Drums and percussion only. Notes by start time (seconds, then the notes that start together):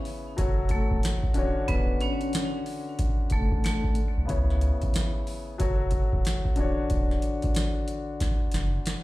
0.05 open hi-hat
0.38 kick, closed hi-hat
0.69 kick, closed hi-hat
0.91 kick
1.03 snare, closed hi-hat
1.23 kick
1.34 closed hi-hat
1.68 kick, closed hi-hat
2.01 closed hi-hat
2.21 closed hi-hat
2.33 snare, closed hi-hat
2.66 open hi-hat
2.99 kick, closed hi-hat
3.30 kick, closed hi-hat
3.52 kick
3.64 snare, closed hi-hat
3.84 kick
3.95 closed hi-hat
4.29 kick, closed hi-hat
4.50 snare
4.61 closed hi-hat
4.82 kick, closed hi-hat
4.94 snare, closed hi-hat
5.27 open hi-hat
5.60 kick, closed hi-hat
5.91 kick, closed hi-hat
6.13 kick
6.25 snare, closed hi-hat
6.45 kick
6.56 closed hi-hat
6.90 kick, closed hi-hat
7.11 snare
7.22 closed hi-hat
7.42 kick, closed hi-hat
7.55 snare, closed hi-hat
7.88 closed hi-hat
8.20 kick, snare, closed hi-hat
8.52 snare, closed hi-hat
8.86 snare, closed hi-hat